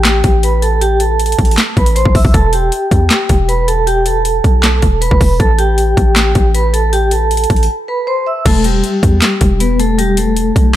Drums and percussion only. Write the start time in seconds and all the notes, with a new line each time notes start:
0.05 snare, clap, closed hi-hat
0.24 kick, closed hi-hat
0.43 closed hi-hat
0.62 closed hi-hat
0.81 closed hi-hat
1.00 closed hi-hat
1.20 closed hi-hat
1.26 closed hi-hat
1.32 closed hi-hat
1.39 kick, closed hi-hat
1.45 closed hi-hat
1.51 closed hi-hat
1.58 snare, clap, closed hi-hat
1.77 kick, closed hi-hat
1.86 closed hi-hat
1.96 closed hi-hat
2.05 kick
2.15 kick, open hi-hat
2.25 kick
2.34 kick, closed hi-hat
2.53 closed hi-hat
2.72 closed hi-hat
2.91 kick, closed hi-hat
3.11 snare, clap, closed hi-hat
3.29 kick, closed hi-hat
3.49 closed hi-hat
3.68 closed hi-hat
3.87 closed hi-hat
4.06 closed hi-hat
4.25 closed hi-hat
4.44 kick, closed hi-hat
4.64 snare, clap, closed hi-hat
4.82 kick, closed hi-hat
5.02 closed hi-hat
5.11 kick
5.21 kick, open hi-hat
5.40 kick, closed hi-hat
5.59 closed hi-hat
5.78 closed hi-hat
5.97 kick, closed hi-hat
6.16 snare, clap, closed hi-hat
6.35 kick, closed hi-hat
6.55 closed hi-hat
6.74 closed hi-hat
6.93 closed hi-hat
7.11 closed hi-hat
7.31 closed hi-hat
7.37 closed hi-hat
7.44 closed hi-hat
7.50 kick, closed hi-hat
7.56 closed hi-hat
7.63 closed hi-hat
8.46 kick, closed hi-hat, crash
8.64 closed hi-hat
8.84 closed hi-hat
9.03 kick, closed hi-hat
9.22 snare, clap, closed hi-hat
9.41 kick, closed hi-hat
9.60 closed hi-hat
9.80 closed hi-hat
9.99 closed hi-hat
10.17 closed hi-hat
10.37 closed hi-hat
10.56 kick, closed hi-hat